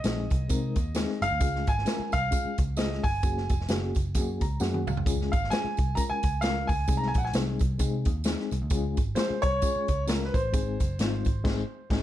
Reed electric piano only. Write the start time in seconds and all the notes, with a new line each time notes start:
0.04 G#3 C4 D#4 G#4
0.48 G#3 C4 D#4 A#4
0.95 G#3 C4 D#4 G#4
1.40 G#3 C#4 F4 G#4
1.85 G#3 C#4 F4 A#4
2.31 G#3 C#4 F4 G#4
2.76 G#3 C#4 F4 G#4
3.23 A#3 C#4 F#4 G#4
3.68 A#3 C#4 F#4 G#4
4.15 A#3 C#4 F#4 G#4
4.42 A#5
4.60 A#3 C#4 F#4 G#4 F#5
4.87 F5
5.06 G#3 C#4 F4 G#4
5.51 G#3 C#4 F4 G#4
5.96 G#3 C#4 F4 A#4
6.42 G#3 C#4 F4 A#4
6.88 G#3 C4 D#4 G#4
7.33 G#3 C4 D#4 G#4
7.78 G#3 C4 D#4 G#4
8.25 G#3 C4 D#4 G#4
8.71 G#3 C#4 F4 G#4
9.16 G#3 C#4 F4 G#4
9.61 G#3 C#4 F4 G#4
10.07 G#3 C#4 F4 A#4
10.52 G#3 C4 D#4 G#4
10.99 G#3 C4 D#4 F4
11.44 G#3 C4 D#4 G#4
11.90 G#3 C4 D#4 G#4